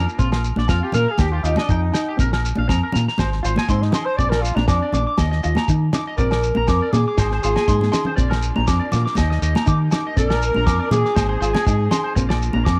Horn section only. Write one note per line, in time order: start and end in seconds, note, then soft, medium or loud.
0.70 0.82 F4 medium
0.82 0.94 G4 medium
0.94 1.08 A#4 medium
1.09 1.20 G#4 medium
1.18 1.32 G4 medium
1.32 1.44 F4 medium
1.44 1.58 D#4 medium
1.58 1.70 D4 medium
1.70 2.19 D#4 medium
3.69 3.82 C4 medium
3.81 3.94 D#4 medium
3.92 4.07 G#4 medium
4.05 4.18 C5 medium
4.16 4.31 D5 medium
4.30 4.43 A#4 medium
4.41 4.56 F4 medium
4.56 4.66 D4 medium
4.67 5.14 D4 medium
6.17 6.89 A#4 medium
6.92 7.41 G#4 medium
7.42 8.13 G#4 medium
10.18 10.89 A#4 medium
10.91 11.38 G#4 medium
11.41 12.12 G#4 loud